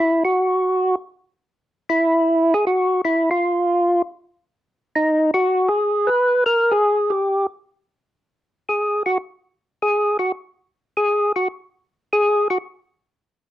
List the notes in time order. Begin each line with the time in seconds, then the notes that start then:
0.00 E4
0.25 F#4
1.90 E4
2.54 G#4
2.67 F#4
3.05 E4
3.31 F4
4.95 D#4
5.34 F#4
5.68 G#4
6.07 B4
6.46 A#4
6.71 G#4
7.10 G4
8.69 G#4
9.06 F#4
9.82 G#4
10.19 F#4
10.97 G#4
11.36 F#4
12.13 G#4
12.50 F#4